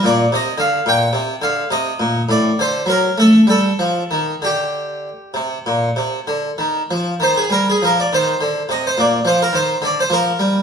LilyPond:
<<
  \new Staff \with { instrumentName = "Harpsichord" } { \time 12/8 \key g \minor \tempo 4. = 68 d''8 ees''8 f''8 g''4 f''8 ees''4 d''8 c''8 bes'8 a'8 | a'4. g'1 r8 | \key c \minor c''16 aes'16 bes'16 aes'16 bes'16 d''16 c''4 ees''16 c''16 d''8 c''16 bes'16 c''8 d''16 c''16 bes'4 | }
  \new Staff \with { instrumentName = "Harpsichord" } { \clef bass \time 12/8 \key g \minor bes,8 c8 d8 bes,8 c8 d8 c8 bes,8 a,8 d8 fis8 a8 | g8 f8 ees8 d4. c8 bes,8 c8 d8 ees8 f8 | \key c \minor ees8 g8 f8 ees8 d8 c8 bes,8 f8 ees8 d8 f8 g8 | }
>>